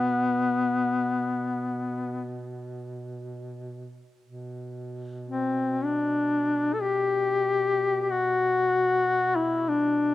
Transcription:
0.00 4.07 B2 soft
0.00 2.43 B3 medium
4.24 10.14 B2 soft
5.29 5.86 C4 medium
5.84 6.75 D4 medium
6.73 6.84 A4 soft
6.82 8.01 G4 medium
8.01 8.12 G4 soft
8.10 9.37 F#4 medium
9.36 9.70 E4 medium
9.68 10.14 D4 medium

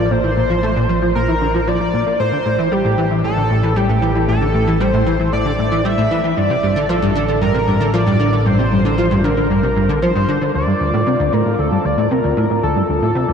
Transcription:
0.00 2.17 A1 medium
0.00 0.13 D5 loud
0.11 0.23 A#2 medium
0.11 1.15 C5 loud
0.24 0.30 E3 medium
0.37 0.49 A#2 medium
0.50 0.60 F3 medium
0.63 0.73 A3 loud
0.76 0.86 A#2 loud
0.89 0.99 F3 loud
1.02 1.12 F3 medium
1.15 1.28 A#2 medium
1.15 1.69 A#4 loud
1.28 1.34 E3 medium
1.41 1.47 D3 medium
1.54 1.60 F3 loud
1.67 1.77 F3 loud
1.67 2.19 D5 loud
1.80 1.93 F3 medium
1.93 2.03 A#2 medium
2.06 2.19 A#3 medium
2.20 6.34 A1 medium
2.20 2.32 A2 medium
2.20 2.74 C5 loud
2.33 2.38 D3 medium
2.46 2.58 A2 medium
2.59 2.68 E3 medium
2.72 2.82 G3 loud
2.72 3.24 G4 medium
2.85 2.95 A2 loud
2.98 3.08 E3 loud
3.11 3.21 E3 medium
3.24 3.36 A2 medium
3.24 3.78 A4 loud
3.37 3.43 D3 medium
3.50 3.62 A2 medium
3.63 3.73 E3 loud
3.76 3.86 G3 loud
3.76 4.28 G4 medium
3.89 3.99 A2 loud
4.02 4.12 E3 loud
4.15 4.25 E3 medium
4.28 4.41 A2 medium
4.28 4.82 A4 loud
4.41 4.47 D3 medium
4.54 4.67 A2 medium
4.67 4.77 E3 medium
4.80 4.90 G3 loud
4.80 5.32 C5 loud
4.93 5.03 A2 loud
5.06 5.16 E3 loud
5.20 5.29 E3 medium
5.33 5.45 A2 medium
5.33 5.87 D5 loud
5.46 5.52 D3 medium
5.59 5.71 A2 medium
5.72 5.82 E3 loud
5.85 5.95 G3 loud
5.85 6.30 E5 loud
5.98 6.08 A2 loud
6.11 6.21 E3 loud
6.24 6.34 E3 medium
6.30 6.39 E5 medium
6.37 10.52 A1 medium
6.37 6.49 G2 medium
6.37 6.91 D5 loud
6.50 6.56 C3 medium
6.63 6.75 G2 medium
6.76 6.86 D3 loud
6.89 6.99 F3 loud
6.89 7.41 A4 medium
7.02 7.12 G2 loud
7.15 7.25 D3 loud
7.28 7.38 D3 medium
7.41 7.54 G2 medium
7.41 7.95 A#4 loud
7.54 7.60 C3 medium
7.67 7.80 G2 medium
7.80 7.90 D3 loud
7.94 8.03 F3 loud
7.94 8.47 D5 loud
8.07 8.16 G2 loud
8.20 8.29 D3 loud
8.33 8.42 D3 medium
8.46 8.58 G2 medium
8.46 9.26 C5 loud
8.59 8.65 C3 medium
8.72 8.84 G2 medium
8.85 8.95 D3 loud
8.98 9.08 F3 loud
9.11 9.21 G2 loud
9.24 9.34 D3 loud
9.24 10.02 A#4 medium
9.37 9.47 D3 medium
9.50 9.63 G2 medium
9.63 9.69 C3 medium
9.76 9.89 G2 medium
9.89 9.99 D3 loud
10.02 10.12 F3 loud
10.02 10.51 C5 medium
10.15 10.25 G2 loud
10.28 10.38 D3 loud
10.41 10.51 D3 medium
10.54 13.33 D2 medium
10.54 10.67 D2 medium
10.54 13.33 F4 medium
10.54 11.35 D5 loud
10.54 13.33 D6 medium
10.68 10.73 G2 medium
10.80 10.93 D2 medium
10.94 11.03 A2 loud
11.07 11.16 C3 loud
11.20 11.29 D2 loud
11.33 11.42 A2 loud
11.33 11.61 A#4 medium
11.46 11.56 A2 medium
11.59 11.71 D2 medium
11.59 11.87 A4 medium
11.72 11.78 G2 medium
11.85 11.97 D2 medium
11.85 12.13 D5 medium
11.98 12.08 A2 loud
12.11 12.21 C3 loud
12.11 12.63 A#4 medium
12.24 12.34 D2 loud
12.37 12.47 A2 loud
12.50 12.60 A2 medium
12.63 12.76 D2 medium
12.63 13.33 A4 loud
12.76 12.82 G2 medium
12.89 13.02 D2 medium
13.02 13.12 A2 medium
13.15 13.25 C3 loud
13.28 13.33 D2 loud

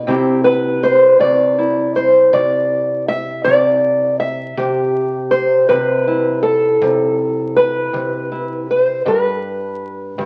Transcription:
0.07 1.19 C3 medium
0.07 4.52 C4 soft
0.07 1.58 E4 medium
0.07 0.44 G4 medium
0.07 kick medium
0.44 1.57 B4 medium
0.83 1.20 C5 medium
1.19 2.32 C3 medium
1.19 1.95 D5 medium
1.19 kick medium
1.58 4.53 E4 soft
1.96 2.33 C5 medium
2.33 3.44 C3 medium
2.33 3.08 D5 loud
2.33 kick medium
3.08 3.44 E5 loud
3.44 4.53 C3 medium
3.44 4.19 D5 loud
3.44 kick medium
4.20 5.31 E5 medium
4.57 5.69 C3 medium
4.57 5.68 G4 soft
4.57 kick medium
5.31 6.44 C5 medium
5.69 6.81 C3 medium
5.69 6.42 B4 medium
5.69 kick medium
6.08 8.31 E4 medium
6.43 7.56 A4 medium
6.82 7.92 C3 medium
6.82 kick medium
7.56 9.06 B4 medium
7.93 9.01 C3 medium
7.93 kick medium
8.32 9.02 E4 soft
8.71 9.07 C5 medium
9.06 10.18 G2 medium
9.06 10.25 B4 medium
9.06 kick medium
10.18 10.25 G2 medium
10.18 kick medium

